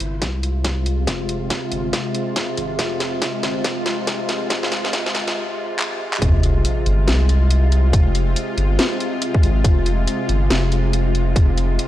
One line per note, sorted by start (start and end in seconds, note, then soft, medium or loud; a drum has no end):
0.00 0.23 G1 medium
0.00 6.18 C3 medium
0.00 6.18 G#3 medium
0.00 6.18 F4 medium
0.00 closed hi-hat medium
0.22 1.06 C2 medium
0.22 kick medium
0.22 snare medium
0.22 closed hi-hat medium
0.43 closed hi-hat medium
0.65 kick loud
0.65 snare medium
0.65 closed hi-hat medium
0.86 closed hi-hat medium
1.07 1.49 F1 loud
1.07 kick loud
1.07 snare medium
1.07 closed hi-hat medium
1.29 closed hi-hat medium
1.50 kick medium
1.50 snare medium
1.50 closed hi-hat medium
1.72 1.92 G1 medium
1.72 closed hi-hat medium
1.93 kick loud
1.93 snare medium
1.93 closed hi-hat medium
2.15 closed hi-hat medium
2.36 kick loud
2.36 snare medium
2.36 closed hi-hat medium
2.57 2.77 G#1 medium
2.57 closed hi-hat medium
2.79 3.21 F1 loud
2.79 kick loud
2.79 snare medium
2.79 closed hi-hat medium
3.00 snare medium
3.00 closed hi-hat medium
3.22 kick medium
3.22 snare medium
3.22 closed hi-hat medium
3.43 3.63 G1 medium
3.43 snare medium
3.43 closed hi-hat medium
3.64 4.49 F1 medium
3.64 kick loud
3.64 snare medium
3.64 closed hi-hat medium
3.86 snare medium
3.86 closed hi-hat medium
4.07 kick loud
4.07 snare medium
4.07 closed hi-hat medium
4.29 snare medium
4.29 closed hi-hat medium
4.50 4.92 F1 loud
4.50 kick loud
4.50 snare medium
4.50 closed hi-hat medium
4.63 snare medium
4.72 snare medium
4.72 closed hi-hat medium
4.85 snare medium
4.93 kick medium
4.93 snare loud
4.93 closed hi-hat medium
5.06 snare medium
5.14 5.35 G1 medium
5.14 snare loud
5.14 closed hi-hat medium
5.28 snare medium
5.28 closed hi-hat soft
5.79 clap loud
6.13 clap medium
6.22 6.64 F1 loud
6.22 11.88 C3 medium
6.22 11.88 G#3 medium
6.22 11.88 F4 medium
6.22 kick loud
6.22 closed hi-hat medium
6.22 sub drop medium
6.43 closed hi-hat medium
6.65 closed hi-hat medium
6.86 7.09 G1 medium
6.86 closed hi-hat medium
7.07 7.92 C2 medium
7.07 snare loud
7.07 closed hi-hat medium
7.29 closed hi-hat medium
7.50 closed hi-hat medium
7.72 closed hi-hat medium
7.93 8.35 F1 loud
7.93 kick loud
7.93 closed hi-hat medium
8.15 closed hi-hat medium
8.36 closed hi-hat medium
8.57 8.78 G1 medium
8.57 closed hi-hat medium
8.79 snare loud
8.79 closed hi-hat medium
9.00 closed hi-hat medium
9.22 closed hi-hat medium
9.35 kick loud
9.43 9.63 G#1 medium
9.43 closed hi-hat medium
9.64 10.06 F1 loud
9.64 kick loud
9.64 closed hi-hat medium
9.86 closed hi-hat medium
10.07 closed hi-hat medium
10.29 10.49 G1 medium
10.29 closed hi-hat medium
10.50 11.35 F1 medium
10.50 snare loud
10.50 closed hi-hat medium
10.72 closed hi-hat medium
10.93 closed hi-hat medium
11.15 closed hi-hat medium
11.36 11.78 F1 loud
11.36 kick loud
11.36 closed hi-hat medium
11.58 closed hi-hat medium
11.79 closed hi-hat medium